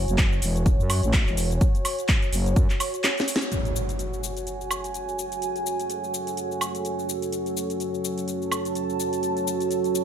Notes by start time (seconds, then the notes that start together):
Already playing: F#4 C#5 G#5
0.08 F#1, closed hi-hat, shaker
0.18 kick, clap, closed hi-hat, shaker
0.33 shaker
0.42 E1, open hi-hat, shaker
0.56 closed hi-hat, shaker
0.66 kick, closed hi-hat, shaker
0.80 F#2, shaker
0.90 open hi-hat, high woodblock, shaker
1.03 A1, closed hi-hat, shaker
1.13 kick, clap, closed hi-hat, shaker
1.27 E1, clap, shaker
1.37 open hi-hat, shaker
1.51 closed hi-hat, shaker
1.61 kick, closed hi-hat, shaker
1.75 closed hi-hat, shaker
1.85 open hi-hat, high woodblock, shaker
1.99 closed hi-hat, shaker
2.09 kick, clap, closed hi-hat, shaker
2.22 closed hi-hat, shaker
2.33 F#1, open hi-hat, shaker
2.46 closed hi-hat, shaker
2.56 F#2, kick, closed hi-hat, shaker
2.70 clap, closed hi-hat, shaker
2.80 open hi-hat, high woodblock, shaker
2.94 closed hi-hat, shaker
3.04 snare, clap, closed hi-hat, shaker
3.18 snare, closed hi-hat, shaker
3.28 open hi-hat, shaker
3.36 snare
3.41 closed hi-hat, shaker
3.52 F#3 C#4 F#4 G#4 A4, closed hi-hat, impact, shaker
3.65 closed hi-hat, shaker
3.74 C#5, shaker
3.82 G#5
3.89 closed hi-hat, shaker
3.99 closed hi-hat, shaker
4.13 shaker
4.24 shaker
4.37 closed hi-hat, shaker
4.47 closed hi-hat, shaker
4.61 shaker
4.71 high woodblock, shaker
4.84 closed hi-hat, shaker
4.94 closed hi-hat, shaker
5.09 shaker
5.19 shaker
5.32 closed hi-hat, shaker
5.42 closed hi-hat, shaker
5.56 closed hi-hat, shaker
5.66 shaker
5.79 closed hi-hat, shaker
5.90 closed hi-hat, shaker
6.04 shaker
6.14 shaker
6.27 closed hi-hat, shaker
6.37 closed hi-hat, shaker
6.52 shaker
6.61 high woodblock, shaker
6.75 closed hi-hat, shaker
6.85 closed hi-hat, shaker
6.99 shaker
7.09 shaker
7.22 closed hi-hat, shaker
7.32 F#4, closed hi-hat, shaker
7.46 closed hi-hat, shaker
7.57 shaker
7.70 closed hi-hat, shaker
7.80 closed hi-hat, shaker
7.94 shaker
8.05 shaker
8.09 A5
8.18 closed hi-hat, shaker
8.28 closed hi-hat, shaker
8.42 shaker
8.52 high woodblock, shaker
8.65 closed hi-hat, shaker
8.75 closed hi-hat, shaker
8.90 shaker
9.00 shaker
9.13 closed hi-hat, shaker
9.23 closed hi-hat, shaker
9.37 closed hi-hat, shaker
9.47 shaker
9.60 closed hi-hat, shaker
9.71 closed hi-hat, shaker
9.84 closed hi-hat, shaker
9.95 shaker